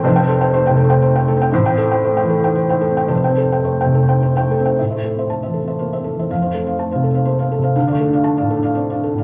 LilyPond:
<<
  \new Staff \with { instrumentName = "Felt piano" } { \time 3/4 \key f \lydian \tempo 4 = 120 c''16 <c'' g''>16 a'16 <c'' g''>16 c''16 <c'' g''>16 a'16 <c'' g''>16 c''16 <c'' g''>16 a'16 <c'' g''>16 | c''16 <c'' g''>16 a'16 <c'' g''>16 c''16 <c'' g''>16 a'16 <c'' g''>16 c''16 <c'' g''>16 a'16 <c'' g''>16 | c''16 <c'' g''>16 a'16 <c'' g''>16 c''16 <c'' g''>16 a'16 <c'' g''>16 c''16 <c'' g''>16 a'16 <c'' g''>16 | \key a \phrygian e''16 <c'' e''>16 a'16 <c'' e''>16 a''16 <c'' e''>16 a'16 <c'' e''>16 c''16 <c'' e''>16 a'16 <c'' e''>16 |
f''16 <c'' f''>16 a'16 <c'' f''>16 a''16 <c'' f''>16 a'16 <c'' f''>16 c''16 <c'' f''>16 a'16 <c'' f''>16 | f''16 <d'' f''>16 a'16 <d'' f''>16 a''16 <d'' f''>16 a'16 <d'' f''>16 d''16 <d'' f''>16 a'16 <d'' f''>16 | }
  \new Staff \with { instrumentName = "Felt piano" } { \time 3/4 \key f \lydian \tuplet 3/2 { <f,, f,>8 c'4 a8 c8 a8~ a8 a8 c'8 } | \tuplet 3/2 { <a,, a,>8 c'4 a8 e8 a8~ a8 a8 c'8 } | \tuplet 3/2 { <f,, f,>8 c'4 a8 c8 a8~ a8 a8 c'8 } | \key a \phrygian \tuplet 3/2 { a,8 a8 c'8 a8 e8 c'8 bes8 c'8 e8 } |
\tuplet 3/2 { f,8 a8 c'8 a8 c8 c'8 bes8 c'8 c8 } | \tuplet 3/2 { d,8 a8 d'8 a8 a,8 d'8 c'8 d'8 a,8 } | }
>>